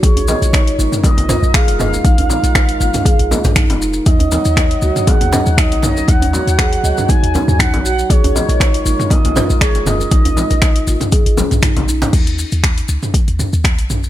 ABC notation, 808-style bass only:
X:1
M:4/4
L:1/16
Q:"Swing 16ths" 1/4=119
K:Ebm
V:1 name="808-style bass" clef=bass
B,,,2 z B,,,2 z A,,, z2 B,,, z B,,,2 F,,,2 z | B,,,2 z B,,,2 z A,,, z2 B,,, z B,,,2 F,,,2 z | E,,2 z E,,2 z D,, z2 E,, z E,,2 B,,,2 z | E,,2 z E,,2 z D,, z2 E,, z E,,2 B,,,2 z |
B,,,2 z B,,,2 z A,,, z2 B,,, z B,,,2 F,,,2 z | B,,,2 z B,,,2 z A,,, z2 A,,, z B,,, z B,,,2 z | E,,2 z E,,2 z D,, z2 E,, z E,,2 B,,,2 z |]